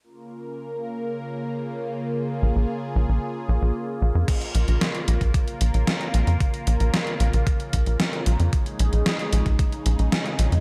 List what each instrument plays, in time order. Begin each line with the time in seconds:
0.03 analog synth pad C#3 A#3 F4 A#4
2.16 analog synth pad G#4
2.42 analog synth bass A#1
2.56 analog synth bass A#1
2.96 analog synth bass A#1
3.09 analog synth bass A#1
3.49 analog synth bass A#1
3.62 analog synth bass A#1
4.02 analog synth bass A#1
4.15 analog synth bass F2
4.28 analog synth pad C#3 A#3 F4 A#4, kick, closed hi-hat, crash
4.41 closed hi-hat
4.55 analog synth bass A#1, closed hi-hat
4.68 analog synth bass A#1, closed hi-hat
4.81 snare, closed hi-hat
4.95 closed hi-hat
5.08 analog synth bass A#1, closed hi-hat
5.21 analog synth bass A#1, kick, closed hi-hat
5.34 kick, closed hi-hat
5.48 closed hi-hat
5.61 analog synth bass A#1, closed hi-hat
5.74 analog synth bass A#1, closed hi-hat
5.87 snare, closed hi-hat
6.01 closed hi-hat
6.14 analog synth bass A#1, closed hi-hat
6.27 analog synth bass F2, closed hi-hat
6.40 kick, closed hi-hat
6.54 closed hi-hat
6.67 analog synth bass A#1, closed hi-hat
6.80 analog synth bass A#1, closed hi-hat
6.94 snare, closed hi-hat
7.07 closed hi-hat
7.20 analog synth bass A#1, closed hi-hat
7.33 analog synth bass A#1, closed hi-hat
7.47 kick, closed hi-hat
7.60 closed hi-hat
7.73 analog synth bass A#1, kick, closed hi-hat
7.86 analog synth bass A#1, closed hi-hat
8.00 snare, closed hi-hat
8.13 closed hi-hat
8.26 analog synth bass A#1, closed hi-hat
8.40 analog synth bass F2, closed hi-hat
8.53 analog synth pad G#3 D#4 G#4, kick, closed hi-hat
8.66 closed hi-hat
8.79 analog synth bass A#1, closed hi-hat
8.93 analog synth bass A#1, closed hi-hat
9.06 snare, closed hi-hat
9.19 closed hi-hat
9.33 analog synth bass A#1, closed hi-hat
9.46 analog synth bass A#1, kick, closed hi-hat
9.59 kick, closed hi-hat
9.72 closed hi-hat
9.86 analog synth bass A#1, closed hi-hat
9.99 analog synth bass A#1, closed hi-hat
10.12 snare, closed hi-hat
10.26 closed hi-hat
10.39 analog synth bass A#1, closed hi-hat
10.52 analog synth bass F2, closed hi-hat